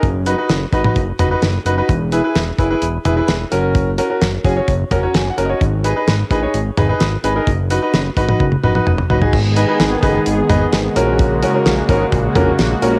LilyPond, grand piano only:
\new Staff \with { instrumentName = "Grand piano" } { \time 4/4 \key b \major \tempo 4 = 129 << { r1 | r1 | r2 r8 ais''8 \tuplet 3/2 { gis''8 fis''8 dis''8 } | r1 |
r1 | r1 | r1 | } \\ { r8 <dis' fis' b'>16 <dis' fis' b'>16 r8 <dis' fis' b'>16 <dis' fis' b'>16 r8 <dis' fis' b'>16 <dis' fis' b'>16 r8 <dis' fis' b'>16 <dis' fis' b'>16 | r8 <e' gis' b'>16 <e' gis' b'>16 r8 <e' gis' b'>16 <e' gis' b'>16 r8 <e' gis' b'>16 <e' gis' b'>16 r8 <cis' fis' ais'>8~ | <cis' fis' ais'>16 r16 <cis' fis' ais'>16 <cis' fis' ais'>16 r8 <cis' fis' gis'>16 <cis' fis' cis''>16 r8 <cis' fis' ais'>16 <cis' fis' cis''>16 r8 <cis' fis' ais'>16 <cis' fis' cis''>16 | r8 <dis' gis' b'>16 <dis' gis' b'>16 r8 <dis' gis' b'>16 <dis' gis' cis''>16 r8 <dis' gis' b'>16 <dis' gis' b'>16 r8 <dis' gis' b'>16 <dis' gis' ais'>16 |
r8 <dis' fis' b'>16 <dis' fis' b'>16 r8 <dis' fis' b'>16 <dis' fis' b'>16 r8 <dis' fis' b'>16 <dis' fis' b'>16 r8 <dis' fis' b'>16 <dis' fis' gis'>16 | r8 <dis' gis' b'>16 <dis' gis' b'>16 r8 <dis' gis' b'>16 r8. <dis' gis' b'>16 r8. <cis' fis' ais'>8~ | <cis' fis' ais'>16 r16 <cis' fis' ais'>16 <cis' fis' ais'>16 r8 <cis' fis' ais'>16 r8. <cis' fis' ais'>16 r8. <cis' fis' ais'>16 r16 | } >> }